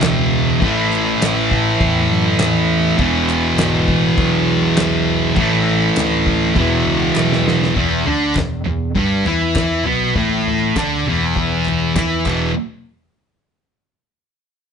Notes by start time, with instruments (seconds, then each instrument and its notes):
Already playing: distorted electric guitar E2 B2 E3
0.01 picked electric bass C#2, snare, clap, crash
0.61 picked electric bass A1, distorted electric guitar A2 E3, kick, crash
0.65 distorted electric guitar A3
0.93 clap
1.22 picked electric bass A1, snare, clap, crash
1.51 kick
1.81 picked electric bass E2, kick, crash
2.11 picked electric bass F#2
2.39 picked electric bass E2, snare, clap, crash
2.98 picked electric bass E1, distorted electric guitar E2 B2, kick, crash
3.03 distorted electric guitar E3
3.30 clap
3.57 picked electric bass G#1, snare, clap, crash
3.88 picked electric bass A1, kick
4.17 picked electric bass B1, kick, crash
4.77 picked electric bass B1, snare, clap, crash
5.35 picked electric bass A1, distorted electric guitar A2 E3, kick, crash
5.40 distorted electric guitar A3
5.97 picked electric bass D2, snare, clap, crash
6.27 kick
6.54 picked electric bass E1, distorted electric guitar E2 B2, kick, crash
6.60 distorted electric guitar E3
6.85 picked electric bass C#2
7.16 picked electric bass B1, snare, clap
7.32 snare
7.48 snare
7.63 snare
7.75 picked electric bass E1, distorted electric guitar E2 E3, kick, floor tom
8.04 picked electric bass D2, distorted electric guitar D3 D4, floor tom
8.35 picked electric bass E1, distorted electric guitar E2, kick, snare, clap, floor tom
8.64 picked electric bass E1, distorted electric guitar E2, floor tom
8.95 picked electric bass G1, distorted electric guitar G2 G3, kick, floor tom
9.24 picked electric bass E2, distorted electric guitar E3 E4, clap, floor tom
9.56 kick, snare, clap, floor tom
9.84 picked electric bass B1, distorted electric guitar B2 B3, floor tom
10.15 picked electric bass A1, distorted electric guitar A2 A3, kick, floor tom
10.47 floor tom
10.75 picked electric bass D2, distorted electric guitar D3 D4, kick, snare, clap, floor tom
11.04 picked electric bass E1, distorted electric guitar E2, floor tom
11.08 distorted electric guitar E3
11.36 kick, floor tom
11.66 clap, floor tom
11.95 picked electric bass E2, distorted electric guitar E3 E4, kick, snare, clap, floor tom
12.26 picked electric bass E1, distorted electric guitar E2 B2 E3, kick, clap, crash